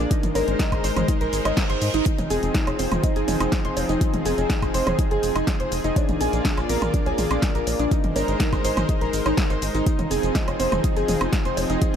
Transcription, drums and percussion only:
0.11 kick, closed hi-hat, shaker
0.23 closed hi-hat, mid tom, shaker
0.35 open hi-hat, high bongo, high conga, shaker
0.48 closed hi-hat, shaker
0.59 kick, snare, closed hi-hat, shaker
0.72 kick, closed hi-hat, high woodblock, shaker
0.84 open hi-hat, shaker
0.96 closed hi-hat, mid tom, high bongo, high woodblock, shaker
1.08 kick, closed hi-hat, shaker
1.21 closed hi-hat, shaker
1.33 open hi-hat, shaker
1.45 closed hi-hat, high bongo, high woodblock, shaker
1.57 kick, snare, closed hi-hat, shaker
1.70 closed hi-hat, shaker
1.82 open hi-hat, shaker
1.94 closed hi-hat, shaker
2.06 kick, closed hi-hat, shaker
2.18 closed hi-hat, mid tom, high bongo, shaker
2.30 open hi-hat, high conga, shaker
2.43 closed hi-hat, shaker
2.54 kick, snare, closed hi-hat, shaker
2.67 closed hi-hat, high bongo, high woodblock, shaker
2.79 open hi-hat, high conga, shaker
2.92 closed hi-hat, mid tom, high woodblock, shaker
3.04 kick, closed hi-hat, shaker
3.16 closed hi-hat, shaker
3.28 open hi-hat, mid tom, high bongo, shaker
3.40 closed hi-hat, high conga, high woodblock, shaker
3.52 kick, snare, closed hi-hat, shaker
3.65 closed hi-hat, shaker
3.77 open hi-hat, high bongo, shaker
3.89 closed hi-hat, shaker
4.01 kick, closed hi-hat, shaker
4.14 closed hi-hat, mid tom, shaker
4.26 open hi-hat, high conga, shaker
4.38 closed hi-hat, high bongo, shaker
4.50 kick, snare, closed hi-hat, shaker
4.62 kick, closed hi-hat, high woodblock, shaker
4.74 open hi-hat, shaker
4.87 closed hi-hat, mid tom, high bongo, high woodblock, shaker
4.99 kick, closed hi-hat, shaker
5.11 closed hi-hat, shaker
5.23 open hi-hat, shaker
5.36 closed hi-hat, high woodblock, shaker
5.47 kick, snare, closed hi-hat, high bongo, shaker
5.60 closed hi-hat, shaker
5.72 open hi-hat, shaker
5.84 closed hi-hat, shaker
5.96 kick, closed hi-hat, high bongo, shaker
6.09 closed hi-hat, mid tom, shaker
6.21 open hi-hat, high conga, shaker
6.33 closed hi-hat, shaker
6.45 kick, snare, closed hi-hat, shaker
6.58 closed hi-hat, high bongo, high woodblock, shaker
6.69 open hi-hat, high conga, shaker
6.82 closed hi-hat, mid tom, high woodblock, shaker
6.94 kick, closed hi-hat, shaker
7.06 closed hi-hat, high bongo, shaker
7.18 open hi-hat, mid tom, shaker
7.31 closed hi-hat, high conga, high woodblock, shaker
7.42 kick, snare, closed hi-hat, shaker
7.55 closed hi-hat, shaker
7.67 open hi-hat, high bongo, shaker
7.79 closed hi-hat, shaker
7.91 kick, closed hi-hat, shaker
8.04 closed hi-hat, mid tom, shaker
8.16 open hi-hat, high bongo, high conga, shaker
8.28 closed hi-hat, shaker
8.40 kick, snare, closed hi-hat, shaker
8.53 kick, closed hi-hat, high woodblock, shaker
8.65 open hi-hat, shaker
8.77 closed hi-hat, mid tom, high bongo, high woodblock, shaker
8.89 kick, closed hi-hat, shaker
9.01 closed hi-hat, shaker
9.13 open hi-hat, shaker
9.26 closed hi-hat, high bongo, high woodblock, shaker
9.37 kick, snare, closed hi-hat, shaker
9.50 closed hi-hat, shaker
9.62 open hi-hat, shaker
9.75 closed hi-hat, shaker
9.86 kick, closed hi-hat, shaker
9.99 closed hi-hat, mid tom, high bongo, shaker
10.11 open hi-hat, high conga, shaker
10.23 closed hi-hat, shaker
10.35 kick, snare, closed hi-hat, shaker
10.48 closed hi-hat, high bongo, high woodblock, shaker
10.60 open hi-hat, high conga, shaker
10.72 closed hi-hat, mid tom, high woodblock, shaker
10.84 kick, closed hi-hat, shaker
10.97 closed hi-hat, shaker
11.08 open hi-hat, mid tom, high bongo, shaker
11.21 closed hi-hat, high conga, high woodblock, shaker
11.32 kick, snare, closed hi-hat, shaker
11.45 closed hi-hat, shaker
11.57 open hi-hat, high bongo, shaker
11.70 closed hi-hat, shaker
11.82 kick, closed hi-hat, shaker

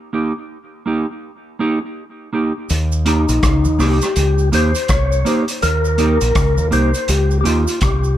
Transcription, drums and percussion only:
2.70 closed hi-hat, cabasa
2.92 cabasa
3.06 closed hi-hat, cabasa
3.29 closed hi-hat, cabasa
3.43 kick, cross-stick, closed hi-hat, cabasa
3.65 cabasa
3.80 cross-stick, open hi-hat, cabasa
4.02 cross-stick, closed hi-hat, cabasa
4.16 closed hi-hat, cabasa
4.38 cabasa
4.53 closed hi-hat, cabasa
4.75 closed hi-hat, cabasa
4.88 kick, cross-stick, closed hi-hat, cabasa
5.12 cabasa
5.26 closed hi-hat, cabasa
5.48 closed hi-hat, cabasa
5.62 closed hi-hat, cabasa
5.85 cabasa
5.98 closed hi-hat, cabasa
6.21 closed hi-hat, cabasa
6.35 kick, cross-stick, closed hi-hat, cabasa
6.58 cabasa
6.72 closed hi-hat, cabasa
6.94 closed hi-hat, cabasa
7.08 closed hi-hat, cabasa
7.31 cabasa
7.45 closed hi-hat, cabasa
7.67 closed hi-hat, cabasa
7.81 kick, cross-stick, closed hi-hat, cabasa
8.04 cabasa

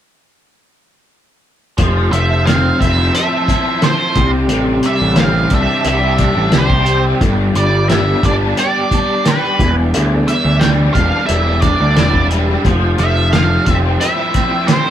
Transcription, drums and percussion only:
1.78 kick, closed hi-hat
2.13 closed hi-hat
2.47 snare, closed hi-hat
2.81 kick, closed hi-hat
3.15 closed hi-hat
3.48 kick, closed hi-hat
3.82 snare, closed hi-hat
4.16 kick, closed hi-hat
4.49 closed hi-hat
4.83 closed hi-hat
5.16 snare, closed hi-hat
5.50 kick, closed hi-hat
5.85 closed hi-hat
6.18 kick, closed hi-hat
6.52 snare, closed hi-hat
6.70 kick
6.86 closed hi-hat
7.21 kick, closed hi-hat
7.55 closed hi-hat
7.90 snare, closed hi-hat
8.23 kick, closed hi-hat
8.57 closed hi-hat
8.91 kick, closed hi-hat
9.25 snare, closed hi-hat
9.59 kick, closed hi-hat
9.94 closed hi-hat
10.28 closed hi-hat
10.61 snare, closed hi-hat
10.95 kick, closed hi-hat
11.29 closed hi-hat
11.62 kick, closed hi-hat
11.97 snare, closed hi-hat
12.14 kick
12.31 closed hi-hat
12.65 kick, closed hi-hat
12.98 closed hi-hat
13.33 snare, closed hi-hat
13.66 kick, closed hi-hat
14.01 closed hi-hat
14.34 kick, closed hi-hat
14.68 snare, closed hi-hat

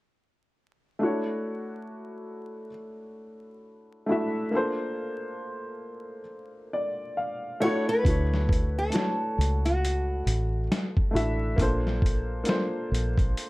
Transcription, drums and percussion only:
8.05 kick, closed hi-hat
8.34 snare
8.49 kick, closed hi-hat
8.92 snare, closed hi-hat
9.41 closed hi-hat
9.66 closed hi-hat
9.85 closed hi-hat
10.27 closed hi-hat
10.72 snare, closed hi-hat
10.97 kick
11.16 closed hi-hat
11.58 kick, closed hi-hat
11.87 snare
12.02 kick, closed hi-hat
12.45 snare, closed hi-hat
12.95 closed hi-hat
13.18 kick, closed hi-hat
13.37 closed hi-hat

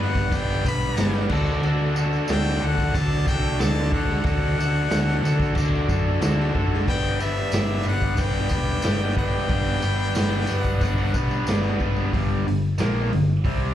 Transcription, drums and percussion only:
0.15 kick, tambourine
0.32 kick, tambourine, crash
0.50 tambourine
0.65 kick, tambourine
0.82 tambourine
0.97 snare, tambourine, crash
1.15 snare, tambourine
1.29 kick, tambourine, crash
1.47 tambourine
1.63 tambourine, crash
1.96 tambourine
2.13 tambourine
2.28 snare, tambourine, crash
2.45 tambourine
2.78 kick, tambourine
2.95 kick, tambourine, crash
3.11 tambourine
3.27 kick, tambourine
3.59 snare, tambourine, crash
3.92 kick
4.09 snare
4.24 kick, tambourine, crash
4.60 tambourine
4.76 tambourine
4.90 snare, tambourine, crash
5.09 tambourine
5.25 tambourine
5.40 kick, tambourine
5.55 kick, tambourine, crash
5.75 tambourine
5.89 kick, tambourine
6.22 snare, tambourine, crash
6.40 snare
6.55 kick
6.74 snare
6.88 kick, tambourine, crash
7.20 tambourine
7.37 tambourine
7.52 snare, tambourine, crash
7.68 tambourine
7.83 tambourine
8.01 kick, tambourine
8.17 kick, tambourine, crash
8.32 tambourine
8.49 kick, tambourine
8.82 snare, tambourine, crash
9.17 kick
9.49 kick, tambourine, crash
9.65 tambourine
9.82 tambourine
9.99 tambourine
10.15 snare, tambourine, crash
10.31 tambourine
10.47 tambourine
10.65 kick, tambourine
10.81 kick, tambourine, crash
10.97 tambourine
11.14 kick, tambourine
11.31 tambourine
11.47 snare, tambourine, crash
11.63 snare, tambourine
11.80 kick, tambourine
11.96 tambourine
12.13 kick, open hi-hat
12.48 open hi-hat
12.78 snare, open hi-hat, tambourine
13.13 open hi-hat
13.45 kick, open hi-hat

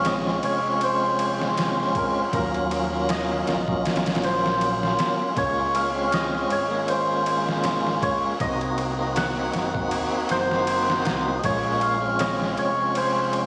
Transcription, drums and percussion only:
0.05 snare, ride
0.27 snare
0.43 ride
0.81 ride
1.19 ride
1.42 snare
1.58 snare, ride
1.80 snare
1.95 kick, ride
2.33 kick, ride
2.54 ride
2.71 ride
3.09 snare, ride
3.47 snare, ride
3.68 kick
3.85 snare, ride
3.96 snare, ride
4.06 snare, ride
4.15 snare, ride
4.23 snare, ride
4.46 snare
4.61 ride
4.83 snare
4.99 snare, ride
5.36 kick, ride
5.75 ride
6.12 snare, ride
6.35 snare
6.50 ride
6.88 ride
7.26 ride
7.49 snare
7.64 snare, ride
7.87 snare
8.02 kick, ride
8.40 kick, ride
8.61 ride
8.78 ride
9.16 snare, ride
9.53 snare, ride
9.75 kick
9.91 ride
10.29 snare, ride
10.51 snare
10.67 ride
10.90 snare
11.05 snare, ride
11.44 kick, ride
11.81 ride
12.19 snare, ride
12.42 snare
12.57 ride
12.95 ride
13.33 ride

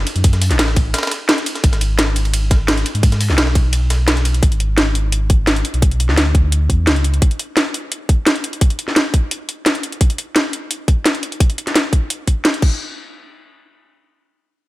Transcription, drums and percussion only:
0.07 closed hi-hat, ride
0.16 closed hi-hat
0.24 kick, closed hi-hat, ride
0.33 snare, closed hi-hat
0.42 closed hi-hat, open hi-hat
0.51 snare, closed hi-hat
0.59 snare, closed hi-hat, ride
0.68 snare
0.76 kick, closed hi-hat, ride
0.94 snare, closed hi-hat, ride
0.98 snare, ride
1.03 snare, ride
1.07 snare, ride
1.11 snare, closed hi-hat, ride
1.29 snare, closed hi-hat, ride
1.38 snare, closed hi-hat
1.46 closed hi-hat, ride
1.55 snare, closed hi-hat
1.64 kick, closed hi-hat, ride
1.73 snare, closed hi-hat
1.81 closed hi-hat, ride
1.99 snare, closed hi-hat, ride
2.16 closed hi-hat, ride
2.25 ride
2.34 closed hi-hat, ride
2.51 kick, snare, closed hi-hat, ride
2.68 snare, closed hi-hat, ride
2.77 snare, closed hi-hat
2.86 closed hi-hat, ride
2.95 closed hi-hat
3.03 kick, closed hi-hat, ride
3.12 snare, closed hi-hat
3.21 closed hi-hat, open hi-hat
3.30 snare
3.38 snare, closed hi-hat, ride
3.47 snare
3.55 kick, closed hi-hat, ride
3.73 closed hi-hat, ride
3.90 snare, closed hi-hat, ride
4.08 snare, closed hi-hat, ride
4.17 snare, closed hi-hat
4.25 closed hi-hat, ride
4.34 closed hi-hat
4.43 kick, closed hi-hat
4.52 closed hi-hat
4.60 closed hi-hat
4.78 snare, closed hi-hat
4.95 closed hi-hat
5.12 closed hi-hat
5.30 kick, closed hi-hat
5.47 snare, closed hi-hat
5.56 closed hi-hat
5.65 closed hi-hat
5.74 closed hi-hat
5.82 kick, closed hi-hat
5.91 closed hi-hat
6.00 closed hi-hat
6.09 snare
6.18 snare, closed hi-hat
6.35 kick, closed hi-hat
6.52 closed hi-hat
6.70 kick, closed hi-hat
6.87 snare, closed hi-hat
6.96 closed hi-hat
7.04 closed hi-hat
7.14 closed hi-hat
7.22 kick, closed hi-hat
7.31 closed hi-hat
7.39 closed hi-hat
7.57 snare, closed hi-hat
7.74 closed hi-hat
7.92 closed hi-hat
8.09 kick, closed hi-hat
8.27 snare, closed hi-hat
8.36 closed hi-hat
8.44 closed hi-hat
8.53 closed hi-hat
8.61 kick, closed hi-hat
8.70 closed hi-hat
8.79 closed hi-hat
8.88 snare
8.96 snare, closed hi-hat
9.14 kick, closed hi-hat
9.31 closed hi-hat
9.49 closed hi-hat
9.66 snare, closed hi-hat
9.75 closed hi-hat
9.83 closed hi-hat
9.92 closed hi-hat
10.01 kick, closed hi-hat
10.10 closed hi-hat
10.18 closed hi-hat
10.36 snare, closed hi-hat
10.53 closed hi-hat
10.71 closed hi-hat
10.88 kick, closed hi-hat
11.06 snare, closed hi-hat
11.15 closed hi-hat
11.23 closed hi-hat
11.32 closed hi-hat
11.40 kick, closed hi-hat
11.50 closed hi-hat
11.58 closed hi-hat
11.67 snare, closed hi-hat
11.76 snare, closed hi-hat
11.93 kick, closed hi-hat
12.10 closed hi-hat
12.28 kick, closed hi-hat
12.45 snare, closed hi-hat
12.54 closed hi-hat
12.62 kick, crash

